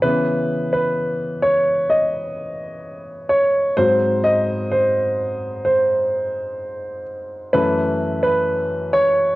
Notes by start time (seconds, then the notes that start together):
0.02 C#3 E3 B3 B4
0.73 B4
1.42 C#5
1.90 D#5
3.29 C#5
3.77 G#2 F#3 C4 C5
4.24 D#5
4.71 C5
5.65 C5
7.53 F#2 E3 A3 B4
8.23 B4
8.93 C#5